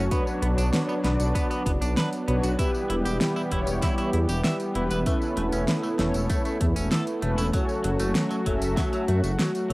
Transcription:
0.11 F#3 B3 D4 F#4 B4 C#5, kick, closed hi-hat, tambourine
0.27 tambourine
0.42 B1 B3, closed hi-hat
0.58 B1 D4, closed hi-hat, tambourine
0.73 snare, closed hi-hat, tambourine
0.89 B3, tambourine
1.04 B1 B3 D4 F#4 B4 D5, snare, closed hi-hat
1.20 B1, closed hi-hat, tambourine
1.35 B3, kick, closed hi-hat, tambourine
1.50 B3, closed hi-hat, tambourine
1.66 F#1 B3, kick, closed hi-hat
1.81 B1 D4, closed hi-hat, tambourine
1.97 B4, snare, closed hi-hat, tambourine
2.13 closed hi-hat, tambourine
2.28 B1 B3 D4 F#4 B4 C#5, closed hi-hat
2.43 B1 F#4, closed hi-hat, tambourine
2.58 E3 G3 B3 E4 G4 B4, kick, closed hi-hat, tambourine
2.74 tambourine
2.90 E1 E4, closed hi-hat
3.05 E1 G4, closed hi-hat, tambourine
3.21 snare, closed hi-hat, tambourine
3.36 E4, tambourine
3.52 E1 B3 E4 G4 C#5, kick, closed hi-hat
3.67 E1, closed hi-hat, tambourine
3.82 E4, kick, snare, closed hi-hat, tambourine
3.98 E4, closed hi-hat, tambourine
4.13 E2 E4, closed hi-hat
4.29 E1 G4, closed hi-hat, tambourine
4.44 E5, snare, closed hi-hat, tambourine
4.60 closed hi-hat, tambourine
4.75 E1 B3 E4 G4 B4, closed hi-hat
4.91 E1 B4, closed hi-hat, tambourine
5.06 A3 C#4 E4 A4 B4, kick, closed hi-hat, tambourine
5.22 tambourine
5.37 E1 A3, closed hi-hat
5.52 E1 C#4, closed hi-hat, tambourine
5.68 snare, closed hi-hat, tambourine
5.83 A3, tambourine
5.99 E1 A3 C#4 E4 A4 C#5, snare, closed hi-hat
6.14 E1, closed hi-hat, tambourine
6.30 A3, kick, closed hi-hat, tambourine
6.45 A3, closed hi-hat, tambourine
6.61 E2 A3, kick, closed hi-hat
6.76 E1 C#4, closed hi-hat, tambourine
6.91 A4, snare, closed hi-hat, tambourine
7.07 closed hi-hat, tambourine
7.22 E1 A3 C#4 E4 A4 B4, closed hi-hat
7.38 E1 E4, closed hi-hat, tambourine
7.53 F#3 C#4 F#4 A4 C#5, kick, closed hi-hat, tambourine
7.69 tambourine
7.84 F#1 F#3, closed hi-hat
8.00 F#1 A3, closed hi-hat, tambourine
8.15 snare, closed hi-hat, tambourine
8.31 F#3, closed hi-hat, tambourine
8.46 F#1 F#3 C#4 F#4 A4 E5, kick, closed hi-hat
8.62 F#1, closed hi-hat, tambourine
8.77 F#3, kick, snare, closed hi-hat, tambourine
8.93 F#3, closed hi-hat, tambourine
9.08 F#2 A3, closed hi-hat
9.24 F#1 A3, closed hi-hat, tambourine
9.39 F#3, snare, closed hi-hat, tambourine
9.55 closed hi-hat, tambourine
9.70 F#3

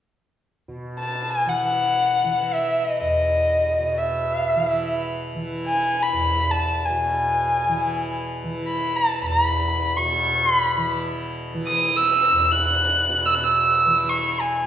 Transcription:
0.68 B2
1.00 A5
1.30 G#5
1.46 E3 F#5
2.24 E3
2.54 E5
2.85 D#5
3.00 E2 D#5
3.79 B2
3.97 E5
4.56 E3
5.35 E3
5.67 G#5
6.03 B5
6.13 E2
6.51 A5
6.85 G#5
6.90 B2
7.69 E3
8.44 E3
8.67 B5
8.96 A5
9.22 E2
9.26 A#5
9.45 B5
9.97 B2 C#6
10.46 C6
10.59 B5
10.77 E3
11.54 E3
11.67 D#6
11.97 E6
12.32 E2
12.51 F#6
13.09 B2
13.26 E6
13.35 F#6
13.43 E6
13.86 E3
14.09 C#6
14.41 G#5

